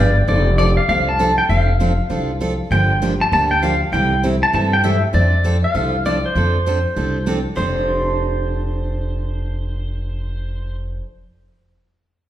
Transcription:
Already playing: upright bass G1
0.00 pedal steel guitar D5
0.27 upright bass F1, steel-string acoustic guitar F3 C4 D4 A4, pedal steel guitar D5
0.58 steel-string acoustic guitar F3 C4 D4 A4, pedal steel guitar D5
0.77 pedal steel guitar F5
0.89 upright bass C2, steel-string acoustic guitar F3 C4 D4 A4, pedal steel guitar F5
1.09 pedal steel guitar A5
1.19 steel-string acoustic guitar F3 C4 D4 A4
1.38 pedal steel guitar G5
1.49 upright bass F1, steel-string acoustic guitar F3 C4 D4 A4, pedal steel guitar F5
1.80 steel-string acoustic guitar F3 C4 D4 A4
2.10 upright bass C2, steel-string acoustic guitar F3 C4 D4 A4
2.40 steel-string acoustic guitar F3 C4 D4 A4
2.71 upright bass G1, steel-string acoustic guitar D3 F3 A#3 D4 G4, pedal steel guitar G5
3.02 steel-string acoustic guitar D3 F3 A#3 D4 G4
3.21 pedal steel guitar A5
3.32 upright bass D2, steel-string acoustic guitar D3 F3 A#3 D4 G4, pedal steel guitar A5
3.51 pedal steel guitar G5
3.62 steel-string acoustic guitar D3 F3 A#3 D4 G4, pedal steel guitar F5
3.92 upright bass C2, steel-string acoustic guitar C3 E3 G3 C4 E4 A4, pedal steel guitar G5
4.23 steel-string acoustic guitar C3 E3 G3 C4 E4 A4
4.43 pedal steel guitar A5
4.53 upright bass G2, steel-string acoustic guitar C3 E3 G3 C4 E4 A4, pedal steel guitar A5
4.73 pedal steel guitar G5
4.83 steel-string acoustic guitar C3 E3 G3 C4 E4 A4, pedal steel guitar E5
5.13 upright bass F2, steel-string acoustic guitar F3 C4 D4 A4, pedal steel guitar D5
5.44 steel-string acoustic guitar F3 C4 D4 A4
5.64 pedal steel guitar F5
5.74 upright bass C2, steel-string acoustic guitar F3 C4 D4 A4
6.05 steel-string acoustic guitar F3 C4 D4 A4, pedal steel guitar D5
6.26 pedal steel guitar C5
6.35 upright bass F2, steel-string acoustic guitar F3 C4 D4 A4
6.66 steel-string acoustic guitar F3 C4 D4 A4
6.96 upright bass C2, steel-string acoustic guitar F3 C4 D4 A4
7.26 steel-string acoustic guitar F3 C4 D4 A4
7.56 upright bass F1, steel-string acoustic guitar F3 C4 D4 A4, pedal steel guitar C5

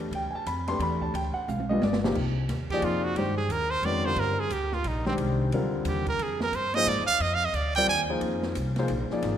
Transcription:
Already playing: upright bass E2, grand piano A3 D4 G4 B4
0.11 upright bass D2, grand piano G5, ride
0.31 grand piano G#5, muted upright bass stroke
0.35 grand piano A5
0.46 upright bass F2, grand piano B5, hi-hat pedal, ride
0.68 grand piano A3 D4 G4 B4 C6, snare, ride
0.79 upright bass E2, grand piano B5, ride
1.02 grand piano A5, kick
1.14 upright bass D2, grand piano G5, ride
1.34 grand piano F#5, muted upright bass stroke
1.48 upright bass B1, grand piano F5, hi-hat pedal, high tom
1.60 high tom
1.69 grand piano G3 B3 D4 F4 D#5, high tom
1.82 upright bass G1, grand piano D5, snare
1.93 snare
2.04 grand piano C3 F3 A#3 D#4 G4, snare
2.15 upright bass C2, kick, crash
2.49 upright bass D#2, snare, hi-hat pedal, ride
2.70 grand piano F3 A#3 D#4 G#4 D5, trumpet G4, kick, ride
2.82 upright bass F2, trumpet F4, ride
3.04 trumpet F#4
3.15 upright bass G2, grand piano D#3 G#3 D4 G4 C5, trumpet G4, ride
3.37 trumpet G#4
3.49 upright bass D#2, trumpet A#4, hi-hat pedal, ride
3.71 trumpet C5
3.82 upright bass F2, grand piano D#3 G#3 C#4 F#4 B4, trumpet D5, ride
4.05 grand piano D3 G3 C4 F4 A#4, trumpet C5
4.16 upright bass G2, trumpet A#4, ride
4.40 trumpet G#4
4.49 upright bass D2, trumpet G4, hi-hat pedal, ride
4.72 trumpet F4, snare
4.84 upright bass A#1, trumpet D#4, ride
5.05 grand piano D#3 G#3 D4 G4 C5, trumpet C4, snare
5.18 upright bass C2, ride
5.52 upright bass D2, grand piano D3 G3 C4 F4 A#4, ride
5.85 upright bass D#2, trumpet G4, hi-hat pedal, ride
6.06 trumpet A#4, kick, ride
6.19 upright bass F2, ride
6.23 trumpet G#4
6.40 trumpet A#4, snare
6.52 upright bass G2, trumpet C5, hi-hat pedal, ride
6.74 grand piano F3 A#3 D#4 G#4 C5, trumpet D#5, snare, ride
6.86 upright bass G#2, trumpet D5, ride
6.98 upright bass F2
7.07 upright bass D#2, trumpet F5
7.20 upright bass F2, trumpet D#5, ride
7.34 trumpet F5
7.45 trumpet D#5
7.53 upright bass D2, trumpet D5, hi-hat pedal, ride
7.75 grand piano G3 C4 F4 A#4 D5, trumpet G5, ride
7.87 upright bass D#2, trumpet G#5
8.10 grand piano F3 A#3 D#4 G#4 C5
8.21 upright bass F2, ride
8.43 snare
8.55 upright bass C2, hi-hat pedal, ride
8.76 grand piano F3 A#3 D#4 G#4 C5, snare, ride
8.88 upright bass A#1, ride
9.10 grand piano F3 A#3 D#4 G#4 D5, muted upright bass stroke, snare
9.22 upright bass G#1, snare, ride

